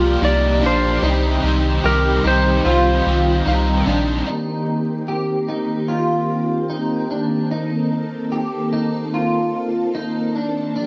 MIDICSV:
0, 0, Header, 1, 7, 480
1, 0, Start_track
1, 0, Tempo, 810811
1, 611, Time_signature, 4, 2, 24, 8
1, 6433, End_track
2, 0, Start_track
2, 0, Title_t, "Five-string banjo"
2, 0, Program_c, 0, 105
2, 608, Note_on_c, 0, 74, 66
2, 1576, Note_on_c, 0, 72, 61
2, 1634, Note_off_c, 0, 74, 0
2, 2057, Note_on_c, 0, 77, 63
2, 2598, Note_off_c, 0, 72, 0
2, 2750, Note_off_c, 0, 77, 0
2, 6433, End_track
3, 0, Start_track
3, 0, Title_t, "Electric slide guitar"
3, 0, Program_c, 1, 29
3, 0, Note_on_c, 1, 81, 107
3, 146, Note_on_c, 1, 74, 78
3, 158, Note_off_c, 1, 81, 0
3, 385, Note_off_c, 1, 74, 0
3, 392, Note_on_c, 1, 72, 80
3, 838, Note_off_c, 1, 72, 0
3, 1099, Note_on_c, 1, 70, 105
3, 1342, Note_off_c, 1, 70, 0
3, 1346, Note_on_c, 1, 72, 98
3, 2275, Note_off_c, 1, 72, 0
3, 6433, End_track
4, 0, Start_track
4, 0, Title_t, "Clean electric guitar"
4, 0, Program_c, 2, 27
4, 0, Note_on_c, 2, 65, 88
4, 131, Note_on_c, 2, 63, 87
4, 132, Note_off_c, 2, 65, 0
4, 368, Note_off_c, 2, 63, 0
4, 370, Note_on_c, 2, 62, 82
4, 609, Note_off_c, 2, 62, 0
4, 611, Note_on_c, 2, 63, 96
4, 1089, Note_on_c, 2, 67, 76
4, 1091, Note_off_c, 2, 63, 0
4, 1326, Note_on_c, 2, 63, 78
4, 1330, Note_off_c, 2, 67, 0
4, 1567, Note_on_c, 2, 65, 80
4, 1568, Note_off_c, 2, 63, 0
4, 2049, Note_off_c, 2, 65, 0
4, 2049, Note_on_c, 2, 63, 83
4, 2283, Note_off_c, 2, 63, 0
4, 2285, Note_on_c, 2, 62, 73
4, 2523, Note_off_c, 2, 62, 0
4, 2525, Note_on_c, 2, 63, 66
4, 3008, Note_off_c, 2, 63, 0
4, 3009, Note_on_c, 2, 67, 68
4, 3248, Note_on_c, 2, 63, 67
4, 3250, Note_off_c, 2, 67, 0
4, 3482, Note_on_c, 2, 65, 62
4, 3489, Note_off_c, 2, 63, 0
4, 3965, Note_on_c, 2, 63, 64
4, 3967, Note_off_c, 2, 65, 0
4, 4205, Note_off_c, 2, 63, 0
4, 4207, Note_on_c, 2, 62, 64
4, 4446, Note_off_c, 2, 62, 0
4, 4448, Note_on_c, 2, 63, 73
4, 4925, Note_on_c, 2, 67, 65
4, 4929, Note_off_c, 2, 63, 0
4, 5167, Note_on_c, 2, 63, 64
4, 5168, Note_off_c, 2, 67, 0
4, 5409, Note_off_c, 2, 63, 0
4, 5411, Note_on_c, 2, 65, 73
4, 5889, Note_on_c, 2, 63, 72
4, 5891, Note_off_c, 2, 65, 0
4, 6128, Note_off_c, 2, 63, 0
4, 6131, Note_on_c, 2, 62, 63
4, 6363, Note_off_c, 2, 62, 0
4, 6370, Note_on_c, 2, 62, 73
4, 6433, Note_off_c, 2, 62, 0
4, 6433, End_track
5, 0, Start_track
5, 0, Title_t, "Overdriven electric guitar"
5, 0, Program_c, 3, 29
5, 0, Note_on_c, 3, 58, 42
5, 0, Note_on_c, 3, 65, 45
5, 0, Note_on_c, 3, 67, 50
5, 0, Note_on_c, 3, 74, 54
5, 124, Note_on_c, 3, 48, 85
5, 126, Note_off_c, 3, 58, 0
5, 126, Note_off_c, 3, 74, 0
5, 129, Note_off_c, 3, 65, 0
5, 129, Note_on_c, 3, 53, 82
5, 131, Note_off_c, 3, 67, 0
5, 133, Note_on_c, 3, 58, 85
5, 136, Note_on_c, 3, 65, 91
5, 140, Note_on_c, 3, 67, 86
5, 141, Note_on_c, 3, 74, 97
5, 355, Note_off_c, 3, 74, 0
5, 362, Note_on_c, 3, 74, 56
5, 367, Note_off_c, 3, 48, 0
5, 367, Note_off_c, 3, 67, 0
5, 370, Note_off_c, 3, 53, 0
5, 372, Note_off_c, 3, 58, 0
5, 373, Note_off_c, 3, 65, 0
5, 374, Note_on_c, 3, 67, 49
5, 381, Note_on_c, 3, 65, 48
5, 389, Note_on_c, 3, 58, 43
5, 602, Note_on_c, 3, 48, 84
5, 607, Note_off_c, 3, 74, 0
5, 611, Note_off_c, 3, 58, 0
5, 612, Note_off_c, 3, 67, 0
5, 612, Note_on_c, 3, 55, 86
5, 613, Note_on_c, 3, 60, 80
5, 616, Note_off_c, 3, 65, 0
5, 618, Note_on_c, 3, 63, 76
5, 623, Note_on_c, 3, 67, 84
5, 838, Note_off_c, 3, 67, 0
5, 845, Note_on_c, 3, 67, 56
5, 847, Note_off_c, 3, 48, 0
5, 851, Note_off_c, 3, 55, 0
5, 851, Note_off_c, 3, 63, 0
5, 852, Note_off_c, 3, 60, 0
5, 858, Note_on_c, 3, 63, 51
5, 867, Note_on_c, 3, 60, 49
5, 1088, Note_off_c, 3, 67, 0
5, 1089, Note_on_c, 3, 48, 72
5, 1091, Note_off_c, 3, 60, 0
5, 1094, Note_off_c, 3, 63, 0
5, 1094, Note_on_c, 3, 55, 88
5, 1098, Note_on_c, 3, 60, 88
5, 1105, Note_on_c, 3, 63, 90
5, 1107, Note_on_c, 3, 67, 86
5, 1322, Note_off_c, 3, 67, 0
5, 1330, Note_off_c, 3, 48, 0
5, 1330, Note_on_c, 3, 67, 60
5, 1333, Note_off_c, 3, 55, 0
5, 1334, Note_off_c, 3, 60, 0
5, 1335, Note_off_c, 3, 63, 0
5, 1342, Note_on_c, 3, 63, 48
5, 1352, Note_on_c, 3, 60, 42
5, 1566, Note_on_c, 3, 55, 66
5, 1568, Note_off_c, 3, 60, 0
5, 1570, Note_off_c, 3, 67, 0
5, 1575, Note_on_c, 3, 60, 74
5, 1576, Note_off_c, 3, 63, 0
5, 1584, Note_on_c, 3, 63, 72
5, 1591, Note_on_c, 3, 67, 71
5, 1798, Note_off_c, 3, 67, 0
5, 1805, Note_on_c, 3, 67, 56
5, 1808, Note_off_c, 3, 55, 0
5, 1811, Note_off_c, 3, 63, 0
5, 1813, Note_off_c, 3, 60, 0
5, 1818, Note_on_c, 3, 63, 50
5, 1830, Note_on_c, 3, 60, 44
5, 2048, Note_off_c, 3, 67, 0
5, 2049, Note_on_c, 3, 48, 85
5, 2051, Note_off_c, 3, 60, 0
5, 2054, Note_on_c, 3, 55, 93
5, 2055, Note_off_c, 3, 63, 0
5, 2058, Note_on_c, 3, 60, 96
5, 2062, Note_on_c, 3, 63, 98
5, 2065, Note_on_c, 3, 67, 100
5, 2279, Note_off_c, 3, 67, 0
5, 2286, Note_on_c, 3, 67, 55
5, 2290, Note_off_c, 3, 48, 0
5, 2292, Note_off_c, 3, 55, 0
5, 2293, Note_off_c, 3, 63, 0
5, 2294, Note_off_c, 3, 60, 0
5, 2300, Note_on_c, 3, 63, 54
5, 2308, Note_on_c, 3, 60, 46
5, 2528, Note_off_c, 3, 67, 0
5, 2535, Note_off_c, 3, 63, 0
5, 2540, Note_off_c, 3, 60, 0
5, 6433, End_track
6, 0, Start_track
6, 0, Title_t, "String machine"
6, 0, Program_c, 4, 50
6, 0, Note_on_c, 4, 53, 80
6, 0, Note_on_c, 4, 58, 69
6, 0, Note_on_c, 4, 67, 88
6, 586, Note_off_c, 4, 53, 0
6, 589, Note_off_c, 4, 58, 0
6, 612, Note_on_c, 4, 51, 74
6, 615, Note_on_c, 4, 60, 64
6, 616, Note_on_c, 4, 55, 71
6, 2506, Note_off_c, 4, 67, 0
6, 2512, Note_off_c, 4, 51, 0
6, 2514, Note_off_c, 4, 55, 0
6, 2514, Note_off_c, 4, 60, 0
6, 2537, Note_on_c, 4, 58, 57
6, 2540, Note_on_c, 4, 67, 71
6, 2541, Note_on_c, 4, 51, 72
6, 2541, Note_on_c, 4, 60, 61
6, 4436, Note_off_c, 4, 67, 0
6, 4459, Note_on_c, 4, 69, 79
6, 6352, Note_off_c, 4, 51, 0
6, 6352, Note_off_c, 4, 60, 0
6, 6356, Note_off_c, 4, 69, 0
6, 6371, Note_on_c, 4, 67, 78
6, 6373, Note_on_c, 4, 74, 60
6, 6375, Note_on_c, 4, 53, 68
6, 6433, Note_off_c, 4, 53, 0
6, 6433, Note_off_c, 4, 58, 0
6, 6433, Note_off_c, 4, 67, 0
6, 6433, Note_off_c, 4, 74, 0
6, 6433, End_track
7, 0, Start_track
7, 0, Title_t, "Analog synth bass"
7, 0, Program_c, 5, 38
7, 0, Note_on_c, 5, 36, 101
7, 100, Note_off_c, 5, 36, 0
7, 126, Note_on_c, 5, 36, 113
7, 368, Note_on_c, 5, 34, 87
7, 377, Note_off_c, 5, 36, 0
7, 581, Note_off_c, 5, 34, 0
7, 604, Note_on_c, 5, 36, 103
7, 818, Note_off_c, 5, 36, 0
7, 849, Note_on_c, 5, 36, 96
7, 1061, Note_off_c, 5, 36, 0
7, 1087, Note_on_c, 5, 36, 91
7, 1300, Note_off_c, 5, 36, 0
7, 1326, Note_on_c, 5, 36, 98
7, 1540, Note_off_c, 5, 36, 0
7, 1571, Note_on_c, 5, 36, 108
7, 1782, Note_off_c, 5, 36, 0
7, 1811, Note_on_c, 5, 36, 94
7, 2022, Note_off_c, 5, 36, 0
7, 2050, Note_on_c, 5, 36, 100
7, 2262, Note_off_c, 5, 36, 0
7, 2289, Note_on_c, 5, 34, 86
7, 2501, Note_off_c, 5, 34, 0
7, 6433, End_track
0, 0, End_of_file